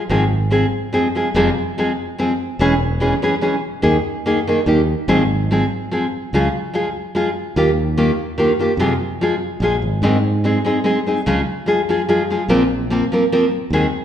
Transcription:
0.09 fingered electric bass G#1, nylon-string guitar G#2 D#3 F3 G#3 C4 G#4
0.50 nylon-string guitar F3 G#3 C4 G#4
0.93 nylon-string guitar F3 G#3 C4 G#4
1.15 nylon-string guitar F3 G#3 C4 G#4
1.34 fingered electric bass F1, nylon-string guitar F2 C3 F3 G#3 C4 G#4
1.78 nylon-string guitar F3 G#3 C4 G#4
2.18 nylon-string guitar F3 G#3 C4 G#4
2.59 fingered electric bass E1, nylon-string guitar E3 G#3 C#4 G#4
3.00 nylon-string guitar E3 G#3 C#4 G#4
3.22 nylon-string guitar E3 G#3 C#4 G#4
3.41 nylon-string guitar E3 G#3 C#4 G#4
3.82 fingered electric bass D#2, nylon-string guitar D#3 A#3 D#4 G#4
4.26 nylon-string guitar D#3 A#3 D#4 G#4
4.47 nylon-string guitar D#3 A#3 D#4 G#4
4.66 fingered electric bass D#2, nylon-string guitar D#3 A#3 D#4 G4
5.08 fingered electric bass G#1, nylon-string guitar G#2 D#3 F3 G#3 C4 G#4
5.51 nylon-string guitar F3 G#3 C4 G#4
5.91 nylon-string guitar F3 G#3 C4 G#4
6.33 fingered electric bass C#2, nylon-string guitar C#3 F3 G#3 F4 G#4
6.74 nylon-string guitar F3 G#3 F4 G#4
7.15 nylon-string guitar F3 G#3 F4 G#4
7.56 fingered electric bass D#2, nylon-string guitar D#3 A#3 F4 G4
7.98 nylon-string guitar D#3 A#3 F4 G4
8.38 nylon-string guitar D#3 A#3 F4 G4
8.59 nylon-string guitar D#3 A#3 F4 G4
8.77 fingered electric bass F2, nylon-string guitar F2 C3 F3 G#3 F4 G#4
9.21 nylon-string guitar F3 G#3 F4 G#4
9.60 fingered electric bass A#1, nylon-string guitar F3 G#3 F4 G#4
9.82 fingered electric bass G#1
10.02 fingered electric bass G#2, nylon-string guitar G#2 D#3 G#3 C4 D#4 G#4
10.44 nylon-string guitar G#3 C4 D#4 G#4
10.65 nylon-string guitar G#3 C4 D#4 G#4
10.84 nylon-string guitar G#3 C4 D#4 G#4
11.06 nylon-string guitar G#3 C4 D#4 G#4
11.26 fingered electric bass C#2, nylon-string guitar C#3 F3 G#3 F4 G#4
11.66 nylon-string guitar F3 G#3 F4 G#4
11.89 nylon-string guitar F3 G#3 F4 G#4
12.09 nylon-string guitar F3 G#3 F4 G#4
12.30 nylon-string guitar F3 G#3 F4 G#4
12.48 fingered electric bass A#1, nylon-string guitar A#2 F3 A#3 C4 A#4
12.90 nylon-string guitar F3 A#3 C4 A#4
13.12 nylon-string guitar F3 A#3 C4 A#4
13.32 nylon-string guitar F3 A#3 C4 A#4
13.70 fingered electric bass D#2, nylon-string guitar D#3 G#3 C4 G#4

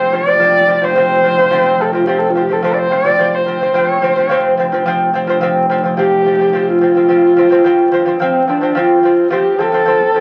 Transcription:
Already playing: double bass F1, horsehead fiddle C5
0.12 lute F3 C4, horsehead fiddle D5
0.26 lute F3 C4
0.39 lute F3 C4
0.67 lute F3 C4
0.81 lute F3 C4, horsehead fiddle C5
0.95 lute F3 C4
1.23 lute F3 C4
1.37 lute F3 C4
1.51 lute F3 C4
1.79 lute F3 C4, horsehead fiddle A4
1.93 lute F3 C4, horsehead fiddle F4
2.05 lute F3 C4, horsehead fiddle G4
2.19 horsehead fiddle A4
2.30 horsehead fiddle F4
2.35 lute F3 C4
2.42 horsehead fiddle G4
2.49 lute F3 C4
2.53 horsehead fiddle A4
2.62 lute F3 C4, horsehead fiddle A4
2.74 horsehead fiddle D5
2.79 horsehead fiddle C5
2.91 lute F3 C4, horsehead fiddle D5
3.04 lute F3 C4
3.19 lute F3 C4
3.35 horsehead fiddle C5
3.46 lute F3 C4
3.61 lute F3 C4
3.74 double bass F1, lute F3 C4
3.91 horsehead fiddle C#5
4.02 lute F3 C4
4.07 horsehead fiddle C5
4.16 lute F3 C4
4.23 horsehead fiddle C#5
4.29 lute F3 C4
4.38 horsehead fiddle C5
4.58 lute F3 C4
4.72 lute F3 C4
4.86 lute F3 C4
5.14 lute F3 C4
5.27 lute F3 C4
5.41 lute F3 C4
5.70 lute F3 C4
5.84 lute F3 C4
5.97 lute F3 C4, horsehead fiddle G4
6.26 lute F3 C4
6.39 lute F3 C4
6.53 lute F3 C4
6.69 horsehead fiddle F4
6.81 lute F3 C4
6.95 lute F3 C4
7.09 lute F3 C4
7.36 lute F3 C4
7.50 lute F3 C4
7.64 lute F3 C4
7.92 lute F3 C4
8.06 lute F3 C4
8.20 lute F3 C4, horsehead fiddle C4
8.47 lute F3 C4, horsehead fiddle D4
8.61 lute F3 C4
8.75 lute F3 C4, horsehead fiddle F4
9.03 lute F3 C4
9.30 lute F3 C4, horsehead fiddle G4
9.59 lute F3 C4, horsehead fiddle A4
9.72 lute F3 C4
9.86 lute F3 C4
10.14 lute F3 C4

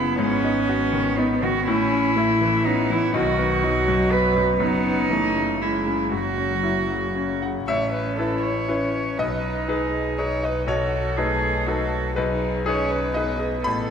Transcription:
Already playing: double bass F#1, grand piano F#2 C#3 E4 F#4, viola B3, cello E4
0.18 double bass G#1, grand piano G#2, cello C#4
0.44 grand piano D#4
0.69 grand piano F#4
0.93 grand piano D#3
1.18 cello B3, grand piano D#4
1.43 grand piano D#3, cello F#4
1.66 double bass A1, grand piano A2, viola C#4, cello E4
1.92 grand piano C#4
2.16 viola A3, grand piano E4
2.41 grand piano E3
2.65 viola B3, grand piano C#4, cello D#4
2.90 grand piano E3, cello E4
3.12 grand piano B1, double bass B1, viola D#3, cello F#4
3.39 grand piano B3
3.63 viola F#3, grand piano D#4
3.88 grand piano F#2
4.12 grand piano B3, cello B4
4.36 grand piano F#2
4.60 double bass F#1, grand piano F#2, viola B3, cello D#4
4.84 grand piano C#4
5.09 grand piano E3, viola A3
5.35 grand piano C#3
5.61 viola G#3, grand piano C#4, cello E4
5.86 grand piano C#3
6.12 grand piano F#2, viola F#3, cello F#4
6.38 grand piano C#4
6.63 grand piano E4
6.90 grand piano C#3
7.16 grand piano C#4
7.42 grand piano C#3 F#5
7.67 grand piano A1 E5, double bass A1, cello C#4, viola C#5
7.93 viola B4
8.17 grand piano C#4 E4 B4, cello E4, viola A4
8.42 viola C#5
8.68 grand piano C#4 E4 B4, cello C#4
9.17 double bass B1, grand piano B1 D#5, cello D#4, viola B4
9.68 grand piano D#4 G#4 B4, viola G#4
10.18 grand piano D#4 G#4 B4, viola C#5
10.43 viola B4, grand piano D#5
10.67 grand piano B1 C#5, cello F#4, viola A4
11.17 grand piano A3 D#4 B4, cello G#4
11.66 grand piano D#4 A4 B4, cello F#4, viola A4
12.16 grand piano B1 B4, cello D#4, viola G#4
12.66 cello C#4, grand piano D#4 G#4 B4, viola C#5
12.91 viola B4
13.14 cello B3, grand piano D#4 G#4 B4 D#5, viola B4
13.39 viola G#4
13.64 double bass A1, grand piano A1 B5, viola A4

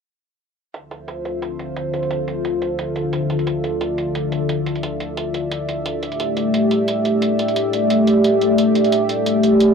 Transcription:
0.74 analog synth pad D3 F4 A4 C5 E5, closed hi-hat
0.91 closed hi-hat
1.08 closed hi-hat
1.25 closed hi-hat
1.42 closed hi-hat
1.59 closed hi-hat
1.77 closed hi-hat
1.94 closed hi-hat
2.03 closed hi-hat
2.11 closed hi-hat
2.28 closed hi-hat
2.45 closed hi-hat
2.62 closed hi-hat
2.79 closed hi-hat
2.96 closed hi-hat
3.13 closed hi-hat
3.30 closed hi-hat
3.39 closed hi-hat
3.47 analog synth pad D5, closed hi-hat
3.64 closed hi-hat
3.81 closed hi-hat
3.98 closed hi-hat
4.15 closed hi-hat
4.32 closed hi-hat
4.49 closed hi-hat
4.66 closed hi-hat
4.76 closed hi-hat
4.83 closed hi-hat
5.00 closed hi-hat
5.17 closed hi-hat
5.34 closed hi-hat
5.52 closed hi-hat
5.69 closed hi-hat
5.86 closed hi-hat
6.03 analog synth pad A3 G4, closed hi-hat
6.12 closed hi-hat
6.20 closed hi-hat
6.37 closed hi-hat
6.54 closed hi-hat
6.71 closed hi-hat
6.88 closed hi-hat
7.05 closed hi-hat
7.22 closed hi-hat
7.39 closed hi-hat
7.48 closed hi-hat
7.56 closed hi-hat
7.73 closed hi-hat
7.90 closed hi-hat
8.07 closed hi-hat
8.24 closed hi-hat
8.41 closed hi-hat
8.58 closed hi-hat
8.75 closed hi-hat
8.84 closed hi-hat
8.92 closed hi-hat
9.09 closed hi-hat
9.26 closed hi-hat
9.43 closed hi-hat
9.60 closed hi-hat

